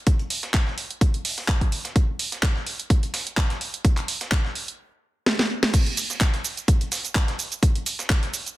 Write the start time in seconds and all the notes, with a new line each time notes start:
0.07 kick, closed hi-hat
0.19 closed hi-hat
0.30 closed hi-hat, open hi-hat
0.43 snare, closed hi-hat
0.54 kick, snare, clap, closed hi-hat
0.67 snare
0.78 closed hi-hat, open hi-hat
0.91 closed hi-hat
1.01 kick, closed hi-hat
1.14 closed hi-hat
1.25 open hi-hat
1.38 snare, closed hi-hat
1.48 kick, snare, clap, closed hi-hat
1.61 kick, closed hi-hat
1.72 closed hi-hat, open hi-hat
1.85 snare, closed hi-hat
1.96 kick, closed hi-hat
2.19 closed hi-hat, open hi-hat
2.32 snare, closed hi-hat
2.43 kick, snare, clap, closed hi-hat
2.56 snare
2.66 closed hi-hat, open hi-hat
2.79 closed hi-hat
2.90 kick, closed hi-hat
3.03 closed hi-hat
3.14 snare, closed hi-hat, open hi-hat
3.27 closed hi-hat
3.37 kick, snare, clap, closed hi-hat
3.50 snare, closed hi-hat
3.61 closed hi-hat, open hi-hat
3.74 closed hi-hat
3.85 kick, closed hi-hat
3.97 clap, closed hi-hat
4.08 closed hi-hat, open hi-hat
4.21 snare, closed hi-hat
4.31 kick, snare, clap, closed hi-hat
4.45 snare
4.55 open hi-hat
4.68 closed hi-hat
5.26 snare
5.39 snare
5.63 snare
5.74 kick, closed hi-hat, crash, shaker
5.86 closed hi-hat
5.97 closed hi-hat, open hi-hat, shaker
6.10 snare, closed hi-hat, shaker
6.21 kick, snare, clap, closed hi-hat, shaker
6.34 snare, closed hi-hat
6.44 closed hi-hat, open hi-hat, shaker
6.57 closed hi-hat, shaker
6.68 kick, closed hi-hat, shaker
6.81 closed hi-hat
6.92 snare, closed hi-hat, open hi-hat, shaker
7.05 closed hi-hat, shaker
7.15 kick, snare, clap, closed hi-hat, shaker
7.28 snare, closed hi-hat
7.39 closed hi-hat, open hi-hat, shaker
7.52 closed hi-hat, shaker
7.63 kick, closed hi-hat, shaker
7.75 closed hi-hat
7.86 closed hi-hat, open hi-hat, shaker
7.99 snare, closed hi-hat, shaker
8.10 kick, snare, clap, closed hi-hat, shaker
8.23 snare, closed hi-hat
8.34 closed hi-hat, open hi-hat, shaker
8.46 closed hi-hat, shaker